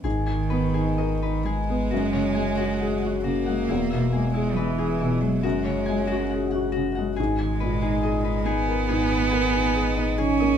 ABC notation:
X:1
M:4/4
L:1/16
Q:1/4=69
K:G#m
V:1 name="Harp"
G g B G d B G2 F c g F f f F f | E e G E B G E2 F c g F f f F f | G g B G d B G2 G B g G d d G d |]
V:2 name="Cello" clef=bass
D,6 G,8 A,2- | A,3 G, E,3 F, G,6 z2 | G,6 B,8 C2 |]
V:3 name="Felt piano" clef=bass
G,, D, B, D A D D, B, F,, C, G, F G F C, G, | E,, B,, G, G G, G B,, G, F,, C, G, F G F C, G, | G,, D, A,, D G D D, A G,, D, A D G D D, A, |]
V:4 name="Sub bass" clef=bass
G,,,8 F,,,8 | E,,,8 F,,,8 | G,,,16 |]